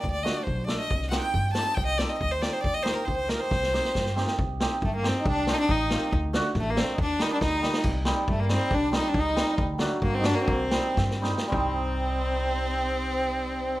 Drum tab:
CC |--------|--------|--------|--------|
SD |--o---o-|-oo---o-|--o---o-|--o---o-|
FT |--------|--------|--------|--------|
BD |o---o---|o---o---|o---o---|o---o---|

CC |--------|--------|--------|--------|
SD |oooooooo|--o---oo|--o---o-|--o-o-o-|
FT |--------|--------|--------|--------|
BD |o---o---|o---o---|o---o---|o---o---|

CC |--------|x-------|--------|--------|
SD |--o-o-oo|--o---o-|--o---oo|--o---oo|
FT |--------|--------|--------|--------|
BD |o---o---|o---o---|o---o---|o---o---|

CC |--------|--------|--------|
SD |--o-oooo|--------|--------|
FT |--------|o-------|--------|
BD |o---o---|o-------|--------|